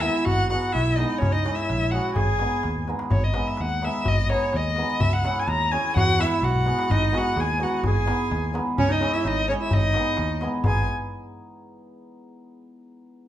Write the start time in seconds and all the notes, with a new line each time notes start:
0.00 G#3 B3 D#4 E4 G#4 E5, darbuka tek
0.15 darbuka tek
0.25 G#1 F#4 F#5, darbuka dum
0.39 darbuka tek
0.49 G#3 B3 D#4 F#4 G#4 F#5, darbuka tek
0.63 darbuka tek
0.73 B1 E4 E5, darbuka tek
0.87 darbuka tek
0.96 G#3 B3 D#4 G#4 D#5, darbuka tek
1.18 C#2 C#4 C#5, darbuka dum
1.32 D#4 D#5, darbuka tek
1.44 G#3 C#4 E4 G#4, darbuka tek
1.55 E4 E5, darbuka tek
1.69 A#1, darbuka tek
1.81 darbuka tek
1.91 G#3 C#4 E4 F#4 G#4 F#5, darbuka tek
2.14 G#1 G#4 G#5, darbuka dum
2.28 darbuka tek
2.39 G#3 B3 D#4 G#4, darbuka tek
2.52 darbuka tek
2.63 D#2, darbuka tek
2.76 darbuka dum
2.88 G#3 B3 D#4 G#4, darbuka tek
2.99 darbuka tek
3.10 G#1 C#5, darbuka dum
3.22 D#5, darbuka tek
3.34 G#3 B3 D#4 G#4, darbuka tek
3.46 E5, darbuka tek
3.57 D#2 F#5, darbuka tek
3.71 darbuka tek
3.82 G#3 B3 D#4 G#4 E5, darbuka tek
3.94 darbuka tek
4.05 G#1 D#5, darbuka dum
4.17 darbuka tek
4.30 G#3 B3 D#4 G#4 C#5, darbuka tek
4.42 darbuka tek
4.53 D#2 D#5, darbuka tek
4.65 darbuka tek
4.76 G#3 B3 D#4 G#4, darbuka tek
5.00 C#2 E5, darbuka dum
5.13 F#5
5.24 G#3 C#4 E4 G#4, darbuka tek
5.37 G#5, darbuka tek
5.47 D#2 A#5, darbuka tek
5.61 darbuka tek
5.71 G#3 C#4 E4 G#4 G#5, darbuka tek
5.85 darbuka tek
5.96 E2 F#4 F#5, darbuka dum
6.19 G#3 B3 E4 G#4 E5, darbuka tek
6.31 darbuka tek
6.41 B1 F#4 F#5, darbuka tek
6.54 darbuka dum
6.65 G#3 B3 E4 G#4, darbuka tek
6.79 darbuka tek
6.90 G#1 D#4 D#5, darbuka dum
7.03 darbuka tek
7.12 G#3 B3 D#4 F#4 G#4, darbuka tek
7.17 F#5
7.27 darbuka tek
7.36 D#2 G#4 G#5, darbuka tek
7.49 darbuka tek
7.58 G#3 B3 D#4 F#4 G#4
7.63 F#5
7.73 darbuka tek
7.83 G#1 G#5, darbuka dum
7.87 G#4
7.96 darbuka tek
8.06 G#3 B3 D#4 G#4, darbuka tek
8.20 darbuka tek
8.31 D#2, darbuka tek
8.44 darbuka tek
8.54 G#3 B3 D#4 G#4, darbuka tek
8.67 darbuka tek
8.78 C#2 C#4 C#5, darbuka dum
8.90 D#4 D#5, darbuka tek
9.00 G#3 C#4 E4 G#4, darbuka tek
9.14 E4 E5, darbuka tek
9.25 G#1 D#4 D#5, darbuka tek
9.48 G#3 C#4 E4 G#4 C#5, darbuka tek
9.60 E4 E5, darbuka tek
9.71 G#1 D#4 D#5, darbuka dum
9.83 darbuka tek
9.94 G#3 B3 D#4 G#4, darbuka tek
10.06 darbuka tek
10.17 D#2, darbuka tek
10.30 darbuka tek
10.41 G#3 B3 D#4 G#4, darbuka tek
10.53 darbuka tek
10.64 G#1 G#3 B3 D#4 G#4 G#5, darbuka dum